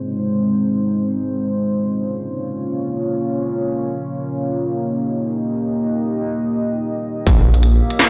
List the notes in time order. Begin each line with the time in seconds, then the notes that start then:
Already playing: G#3 C4 D#4 C5
1.45 A#3 C#4 F4 C#5
4.36 D#4 G4 D#5
7.26 A#1 A#3 C#4 F4 C#5, kick, closed hi-hat
7.54 closed hi-hat
7.63 closed hi-hat
7.90 closed hi-hat
7.99 snare, closed hi-hat